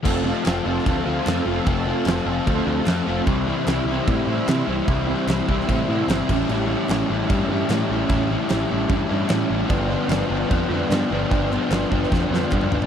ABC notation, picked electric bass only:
X:1
M:4/4
L:1/8
Q:1/4=149
K:Flyd
V:1 name="Picked electric bass" clef=bass
F,,,2 F,,, F,,, D,, D,, F,, F,,, | F,,,2 F,,, F,,, D,, D,, F,, F,,, | C,,2 C,, C,, A,, A,, C, C,, | C,,2 C,, C,, A,, A,, G,,, A,,, |
A,,,2 A,,, A,,, G,, G,, A,, A,,, | A,,,2 A,,, A,,, G,, G,, A,, A,,, | G,,,2 G,,, G,,, F,, F,, G,, G,,, | G,,,2 G,,, G,,, F,, F,, G,, G,,, |]